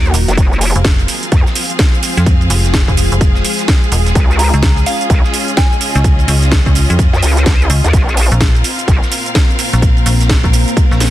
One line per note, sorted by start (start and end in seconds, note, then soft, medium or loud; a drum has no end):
0.00 0.12 D#2 loud
0.00 0.34 D#4 medium
0.00 1.50 D#4 medium
0.00 0.34 F#4 medium
0.00 0.37 F#4 medium
0.00 0.34 A#4 loud
0.00 1.55 A#4 medium
0.00 0.37 F#5 medium
0.05 shaker soft
0.14 0.26 D#1 loud
0.14 open hi-hat loud
0.14 ride medium
0.14 shaker medium
0.28 0.36 F1 loud
0.28 snare medium
0.28 closed hi-hat medium
0.28 shaker soft
0.37 0.73 F1 loud
0.37 4.15 C4 medium
0.37 4.12 F4 medium
0.37 7.89 G#4 medium
0.37 4.12 C5 loud
0.37 kick loud
0.37 closed hi-hat medium
0.37 ride medium
0.37 shaker soft
0.50 11.10 F4 medium
0.50 shaker soft
0.61 open hi-hat loud
0.61 ride medium
0.61 shaker medium
0.68 8.83 G#4 medium
0.68 5.34 F5 medium
0.76 1.07 F1 loud
0.76 closed hi-hat soft
0.76 ride soft
0.76 shaker soft
0.85 kick loud
0.85 snare loud
0.85 closed hi-hat medium
0.85 ride medium
0.85 shaker soft
0.99 ride soft
0.99 shaker soft
1.08 open hi-hat loud
1.08 ride medium
1.08 shaker medium
1.23 closed hi-hat medium
1.23 shaker soft
1.32 1.44 F2 loud
1.32 kick loud
1.32 closed hi-hat medium
1.32 ride medium
1.32 shaker soft
1.47 snare soft
1.47 shaker soft
1.55 open hi-hat loud
1.55 ride medium
1.55 shaker medium
1.70 closed hi-hat medium
1.70 shaker soft
1.79 kick loud
1.79 snare loud
1.79 closed hi-hat medium
1.79 ride medium
1.79 shaker soft
1.94 shaker soft
2.03 open hi-hat loud
2.03 ride medium
2.03 shaker medium
2.17 2.49 F2 loud
2.17 snare soft
2.17 closed hi-hat medium
2.17 shaker soft
2.26 kick loud
2.26 closed hi-hat medium
2.26 ride medium
2.26 shaker soft
2.41 ride soft
2.41 shaker soft
2.50 2.86 F1 loud
2.50 open hi-hat loud
2.50 ride medium
2.50 shaker medium
2.65 snare soft
2.65 closed hi-hat medium
2.65 shaker soft
2.74 kick loud
2.74 snare loud
2.74 closed hi-hat medium
2.74 ride medium
2.74 shaker soft
2.88 3.10 F1 medium
2.88 kick medium
2.88 ride soft
2.88 shaker soft
2.97 open hi-hat medium
2.97 ride medium
2.97 shaker medium
3.12 3.43 F1 loud
3.12 closed hi-hat medium
3.12 shaker soft
3.21 kick loud
3.21 closed hi-hat medium
3.21 ride medium
3.21 shaker soft
3.35 snare soft
3.35 shaker soft
3.45 open hi-hat loud
3.45 ride medium
3.45 shaker medium
3.59 snare soft
3.59 closed hi-hat soft
3.59 shaker soft
3.68 kick loud
3.68 snare loud
3.68 closed hi-hat medium
3.68 ride medium
3.68 shaker soft
3.83 shaker soft
3.92 4.14 D#1 loud
3.92 open hi-hat loud
3.92 ride medium
3.92 shaker medium
4.06 snare medium
4.06 closed hi-hat soft
4.06 shaker soft
4.15 4.51 C#2 loud
4.15 7.90 C#4 medium
4.15 7.93 C#4 medium
4.15 7.90 D#5 medium
4.15 9.78 F5 loud
4.15 kick loud
4.15 closed hi-hat medium
4.15 ride medium
4.15 shaker soft
4.31 shaker soft
4.39 4.48 A#5 medium
4.39 open hi-hat loud
4.39 ride medium
4.39 shaker medium
4.54 4.85 C#2 loud
4.54 4.59 A#5 medium
4.54 closed hi-hat medium
4.54 ride soft
4.54 shaker soft
4.63 kick loud
4.63 snare loud
4.63 closed hi-hat medium
4.63 ride medium
4.63 shaker soft
4.77 ride soft
4.77 shaker soft
4.84 9.33 D#5 medium
4.84 5.01 F5 medium
4.84 open hi-hat medium
4.84 ride medium
4.84 shaker medium
5.01 closed hi-hat medium
5.01 shaker soft
5.10 5.22 C#2 loud
5.10 kick loud
5.10 closed hi-hat medium
5.10 ride medium
5.10 shaker soft
5.24 snare soft
5.24 shaker soft
5.34 open hi-hat loud
5.34 ride medium
5.34 shaker medium
5.48 closed hi-hat soft
5.48 shaker soft
5.57 6.04 G#5 medium
5.57 kick loud
5.57 snare loud
5.57 closed hi-hat medium
5.57 ride medium
5.57 shaker soft
5.72 shaker soft
5.81 open hi-hat loud
5.81 ride medium
5.81 shaker medium
5.95 6.27 C#2 loud
5.95 snare soft
5.95 closed hi-hat medium
5.95 shaker soft
6.04 kick loud
6.04 closed hi-hat medium
6.04 ride medium
6.04 shaker soft
6.19 ride soft
6.19 shaker soft
6.28 6.64 C#2 loud
6.28 open hi-hat loud
6.28 ride medium
6.28 shaker medium
6.43 snare soft
6.43 closed hi-hat medium
6.43 shaker soft
6.52 kick loud
6.52 snare loud
6.52 closed hi-hat medium
6.52 ride medium
6.52 shaker soft
6.66 6.87 C#2 loud
6.66 kick medium
6.66 ride soft
6.66 shaker soft
6.75 open hi-hat medium
6.75 ride medium
6.75 shaker medium
6.90 7.11 F2 loud
6.90 closed hi-hat medium
6.90 shaker soft
6.99 kick loud
6.99 closed hi-hat medium
6.99 ride medium
6.99 shaker soft
7.13 7.21 F2 loud
7.13 snare soft
7.13 shaker soft
7.22 7.45 C#2 loud
7.22 open hi-hat loud
7.22 ride medium
7.22 shaker medium
7.37 snare soft
7.37 closed hi-hat medium
7.37 shaker soft
7.46 7.68 C#2 loud
7.46 kick loud
7.46 snare loud
7.46 closed hi-hat medium
7.46 ride medium
7.46 shaker soft
7.61 shaker soft
7.70 7.82 C#2 loud
7.70 open hi-hat medium
7.70 ride medium
7.70 shaker medium
7.84 7.92 D#2 loud
7.84 snare medium
7.84 closed hi-hat medium
7.84 shaker soft
7.93 8.29 A#1 loud
7.93 11.10 A#3 medium
7.93 11.10 C4 medium
7.93 11.10 A#4 medium
7.93 11.10 C5 medium
7.93 kick loud
7.93 closed hi-hat medium
7.93 ride medium
7.93 shaker soft
8.09 11.10 F5 medium
8.09 shaker soft
8.15 11.10 A#4 medium
8.15 open hi-hat loud
8.15 ride medium
8.15 shaker medium
8.32 8.63 A#1 loud
8.32 closed hi-hat medium
8.32 ride soft
8.32 shaker soft
8.41 kick loud
8.41 snare loud
8.41 closed hi-hat medium
8.41 ride medium
8.41 shaker soft
8.55 ride soft
8.55 shaker soft
8.64 open hi-hat medium
8.64 ride medium
8.64 shaker medium
8.79 closed hi-hat medium
8.79 shaker soft
8.88 9.00 A#1 loud
8.88 kick loud
8.88 closed hi-hat medium
8.88 ride medium
8.88 shaker soft
9.03 snare soft
9.03 shaker soft
9.12 open hi-hat loud
9.12 ride medium
9.12 shaker medium
9.26 closed hi-hat medium
9.26 shaker soft
9.35 kick loud
9.35 snare loud
9.35 closed hi-hat medium
9.35 ride medium
9.35 shaker soft
9.50 shaker soft
9.59 open hi-hat medium
9.59 ride medium
9.59 shaker medium
9.73 10.05 A#1 loud
9.73 snare soft
9.73 closed hi-hat medium
9.73 shaker soft
9.82 11.10 D#5 loud
9.82 kick loud
9.82 closed hi-hat medium
9.82 ride medium
9.82 shaker soft
9.97 ride soft
9.97 shaker soft
10.06 10.42 A#1 loud
10.06 open hi-hat loud
10.06 ride medium
10.06 shaker medium
10.21 snare soft
10.21 closed hi-hat medium
10.21 shaker soft
10.29 kick loud
10.29 snare loud
10.29 closed hi-hat medium
10.29 ride medium
10.29 shaker soft
10.44 10.65 A#1 medium
10.44 kick medium
10.44 ride soft
10.44 shaker soft
10.53 open hi-hat medium
10.53 ride medium
10.53 shaker medium
10.68 closed hi-hat medium
10.68 shaker soft
10.77 kick loud
10.77 closed hi-hat medium
10.77 ride medium
10.77 shaker soft
10.91 11.10 A#1 loud
10.91 snare soft
10.91 shaker soft
11.00 snare medium
11.00 snare loud
11.00 open hi-hat loud
11.00 ride medium
11.00 shaker medium